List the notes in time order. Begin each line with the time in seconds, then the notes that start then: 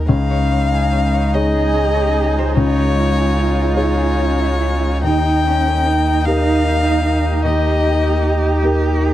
Already playing: D#4 G4 A#4
0.08 C#2 G#3 C#4 D#4 G#4 D#5 F5
0.30 C#5
0.51 C#5
0.72 G#4
0.92 C#4
1.14 C#5
1.34 D#4 G#4 C#5 D#5
1.54 G#4
1.73 C#4
1.94 C#5
2.14 G#4
2.35 F4 C5
2.55 C#2 C#4 F4 C#5
2.76 C#5
2.96 C#5
3.18 G#4
3.37 C#4
3.58 C#5
3.76 D#4 G#4 C#5
3.97 G#4
4.17 C#4
4.39 C#5
4.61 G#4
4.82 F4
5.01 D#2 A#3 D#4 G4 D#5 G5
5.24 D#5
5.45 C#4 D#5
5.66 A#4
5.86 D#4
6.07 D#5
6.26 D#4 G4 A#4 F5
6.46 A#4
6.65 D#4
6.85 D#5
7.06 A#4
7.26 G4
7.44 D#2 D#4 G4 D#5
7.64 D#5
7.84 D#5
8.04 A#4
8.22 D#4
8.42 D#5
8.63 D#4 G4 A#4
8.81 A#4
9.00 D#4